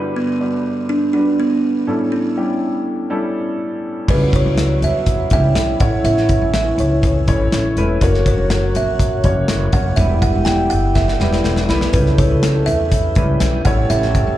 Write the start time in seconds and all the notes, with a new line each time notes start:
Already playing: G1 G2 G3 D4 F#4 B4
0.16 B3
0.40 G3 D4 F#4 B4
0.89 D4
1.13 G3 D4 F#4 B4
1.40 B3
1.87 A1 A2 G3 C#4 E4 A4
2.12 C#4
2.37 G3 C#4 E4 G4
3.10 G3 C#4 E4 A4
4.08 C#2 C#3 E3 F#3 G3 B3 C#4 E4 F#4 B4, kick, crash
4.33 C#5, kick, closed hi-hat
4.46 C#2
4.57 snare, closed hi-hat
4.82 E2 E5, closed hi-hat
5.06 kick, closed hi-hat
5.30 C#2 G3 C#4 E4 G4 E5, kick, closed hi-hat
5.55 B1, snare, closed hi-hat
5.80 A1 A2 C#3 E3 A3 C#4 E4 C#5 F#5, kick, closed hi-hat
6.04 A1 E5, closed hi-hat
6.17 snare
6.29 kick, closed hi-hat
6.41 A1
6.54 E5, snare, closed hi-hat
6.78 C#2 C#5, closed hi-hat
7.03 C#5, kick, closed hi-hat
7.28 A1 A3 C#4 E4 C#5, kick, closed hi-hat
7.52 A1, snare, closed hi-hat
7.77 E1 A3 C#4 E4 B4, closed hi-hat
8.01 F#1 A#2 F#3 A#3 C#4 F#4 A#4 C#5, kick, closed hi-hat
8.14 snare
8.26 C#5, kick, closed hi-hat
8.38 F#1
8.50 snare, closed hi-hat
8.75 A#1 E5, closed hi-hat
8.99 kick, closed hi-hat
9.24 F#1 A#3 C#4 F#4 C#5, kick, closed hi-hat
9.48 F#1, snare, closed hi-hat
9.72 F#1 A#3 C#4 F#4 C#5 F#5, kick, closed hi-hat
9.96 E1 B2 E3 G3 B3 E4 G4 B4 E5, kick, closed hi-hat
10.22 F#5, kick, closed hi-hat
10.35 E1
10.45 G5, snare, closed hi-hat
10.70 F#1 F#5, closed hi-hat
10.95 E5, kick, snare
11.08 snare
11.20 E1 G3 B3 E4 B4, snare
11.33 snare
11.44 E1, snare
11.56 snare
11.69 B1 G3 B3 E4 B4, snare
11.81 snare
11.93 C#2 C#3 G3 A3 B3 C#4 E4 A4 B4, kick, closed hi-hat
12.06 snare
12.18 C#5, kick, closed hi-hat
12.31 C#2
12.43 snare, closed hi-hat
12.66 E2 E5, closed hi-hat
12.92 kick, closed hi-hat
13.15 C#2 G3 C#4 E4 B4, kick, closed hi-hat
13.40 B1, snare, closed hi-hat
13.65 A1 A2 E3 G3 A3 C#4 E4 G4 A4 C#5 F#5, kick, closed hi-hat
13.90 A1 E5, closed hi-hat
14.02 snare
14.15 kick, closed hi-hat
14.27 A1